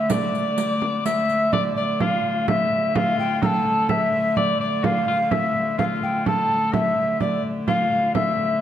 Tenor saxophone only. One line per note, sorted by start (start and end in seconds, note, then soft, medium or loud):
0.00 0.12 E5 medium
0.10 1.05 D5 medium
1.06 1.49 E5 medium
1.53 1.64 D5 medium
1.77 1.99 D5 medium
2.01 2.44 F4 medium
2.48 2.98 E5 medium
2.97 3.44 F4 medium
3.42 3.89 A4 medium
3.90 4.33 E5 medium
4.37 4.59 D5 medium
4.61 4.86 D5 medium
4.84 5.07 F4 medium
5.08 5.18 F4 medium
5.31 5.75 E5 medium
5.78 6.28 F4 medium
6.27 6.75 A4 medium
6.73 7.22 E5 medium
7.21 7.44 D5 medium
7.67 8.11 F4 medium
8.15 8.61 E5 medium